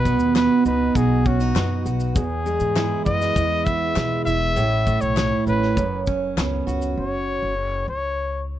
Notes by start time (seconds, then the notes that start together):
Already playing: B1 B2 B3 B4
0.05 B3, kick, shaker
0.20 D#2, shaker
0.35 F#4 B4, snare, clap, shaker
0.65 C#2 D#4 B4, shaker
0.95 B1 F#4 G#4, kick, shaker
1.25 C#4 F#4, kick, shaker
1.40 D#4, shaker
1.55 F#2 B3, snare, clap, shaker
1.85 B1 F#4, shaker
2.00 shaker
2.16 E2 G#4, kick, shaker
2.46 G#3, shaker
2.60 G#2, shaker
2.76 E4, snare, clap, shaker
3.05 F#2 B3 D#5, kick, shaker
3.21 snare, shaker
3.36 E2 E4, kick, shaker
3.64 B3 E5, kick, shaker
3.96 B2 G#3, snare, clap, shaker
4.25 E1 E4 E5, shaker
4.56 A1 A2, shaker
4.87 A3, kick, shaker
5.01 B1 C#5, shaker
5.17 E4, snare, clap, shaker
5.47 A1 C#4 B4, shaker
5.63 snare
5.77 F#1 F#2, kick, shaker
6.07 C#4, kick, shaker
6.37 C#2 B3, snare, clap, shaker
6.67 C#2 F#4, shaker
6.82 shaker
6.97 F#1 C#5
7.42 F#1
7.88 C#2 C#5